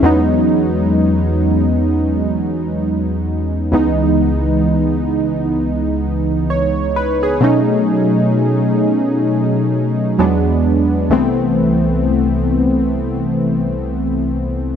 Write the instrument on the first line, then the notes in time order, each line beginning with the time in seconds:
synth keys
Already playing: C#4
0.02 E2 F#3 G#3 B3 D#4
3.72 C#2 E3 G#3 B3 D#4
6.50 C#5
6.96 B4
7.23 G#4
7.41 B2 F#3 A3 C#4 D#4
10.18 E2 F#3 G#3 B3 D4
11.10 C2 E3 A3 B3 C4